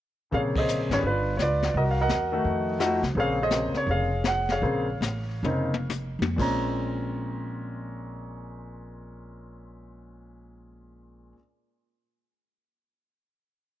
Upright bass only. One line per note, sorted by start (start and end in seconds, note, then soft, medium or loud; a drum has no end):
0.33 0.87 A#1 medium
0.89 1.01 G#1 medium
1.02 1.35 G1 medium
1.38 1.71 C#2 medium
1.74 2.07 C2 medium
2.08 2.41 E2 medium
2.45 2.99 F2 medium
3.03 3.14 C2 medium
3.15 3.70 A#1 medium
3.73 muted upright bass stroke soft
3.87 4.58 F1 medium
4.62 4.99 A#1 medium
5.01 5.41 A1 medium
5.43 6.16 F1 medium
6.19 6.36 F2 medium
6.38 11.32 A#1 medium